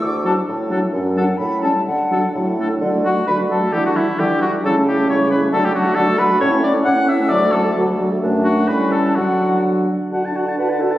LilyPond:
<<
  \new Staff \with { instrumentName = "Flute" } { \time 2/4 \key d \major \tempo 4 = 131 d'''8 a''8 r4 | r8 fis''8 b''8 a''8 | fis''4 r4 | r8 fis''8 b''8 a''8 |
g''16 fis''16 e''8 g''8 fis''8 | a''8 g''8 cis'''8 b''8 | a''16 g''16 fis''8 a''8 b''8 | cis'''8 d'''8 fis'''8 e'''8 |
d'''8 a''8 r4 | r8 fis''8 b''8 a''8 | fis''4 r4 | a''16 fis''16 a''16 fis''16 a''16 fis''16 a''16 fis''16 | }
  \new Staff \with { instrumentName = "Oboe" } { \time 2/4 \key d \major r8 a'16 r8. a'16 r16 | r8 a'16 r8. a'16 r16 | r8 a'16 r8. a'16 r16 | r8 fis'8 b'8 a'8 |
g'16 fis'16 e'8 g'8 fis'8 | a'8 g'8 cis''8 b'8 | a'16 g'16 fis'8 a'8 b'8 | cis''8 d''8 fis''8 e''8 |
d''8 a'8 r4 | r8 fis'8 b'8 a'8 | fis'4 r4 | fis''16 a''16 fis''16 a''16 fis''16 a''16 fis''16 a''16 | }
  \new Staff \with { instrumentName = "Clarinet" } { \time 2/4 \key d \major r8 d'16 r8. d'16 r16 | r8 d'16 r8. cis'16 r16 | r8 d'16 r8. d'16 r16 | d'16 fis'16 d'16 fis'16 d'16 fis'16 d'16 fis'16 |
e'16 d'16 e'16 d'16 e'16 d'16 e'16 d'16 | e'16 cis'16 e'16 cis'16 e'16 cis'16 e'16 cis'16 | d'16 fis'16 d'16 fis'16 d'16 fis'16 d'16 fis'16 | e'16 cis'16 e'16 cis'16 e'16 cis'16 e'16 cis'16 |
fis'16 a'16 fis'16 a'16 fis'16 a'16 fis'16 a'16 | d'4 cis'4 | d'4. r8 | r8 fis'8 b'8 a'8 | }
  \new Staff \with { instrumentName = "French horn" } { \time 2/4 \key d \major r8 fis16 r8. fis16 r16 | r8 fis16 r8. g16 r16 | r8 fis16 r16 fis8 a8 | fis16 a16 fis16 a16 fis16 a16 fis16 a16 |
e16 g16 e16 g16 e16 g16 e16 g16 | g16 a16 g16 a16 g16 a16 g16 a16 | fis16 a16 fis16 a16 fis16 a16 fis16 a16 | cis'16 a16 cis'16 a16 cis'16 a16 cis'16 a16 |
fis16 a16 fis16 a16 fis16 a16 fis16 a16 | a4 g4 | fis4. r8 | fis'16 d'16 fis'16 d'16 fis'16 d'16 fis'16 d'16 | }
  \new Staff \with { instrumentName = "Bassoon" } { \clef bass \time 2/4 \key d \major d,4 a,4 | fis,4 a,4 | d4 a,4 | d4 d4 |
d4 d4 | cis4 cis4 | d4 d4 | a,4 a,4 |
d,4 d,4 | fis,4 a,4 | d4. r8 | d2 | }
>>